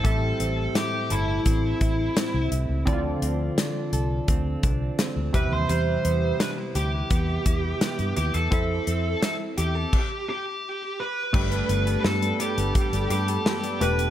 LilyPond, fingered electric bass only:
\new Staff \with { instrumentName = "Fingered electric bass" } { \clef bass \time 4/4 \key g \mixolydian \tempo 4 = 85 a,,8 a,,8 r8 g,,8 a,,8 a,,8 r16 c,16 c,16 cis,16 | d,8 d,8 r8 c,8 d,8 c,8 r16 d,16 r16 dis,16 | e,8 e,8 r8 d,8 e,8 e,8 r16 g,16 dis,16 e,16 | f,8 f,8 r8 e,8 r2 |
g,,8 g,,8 g,8 r16 g,,16 r16 g,,16 g,8 r8 e,,8 | }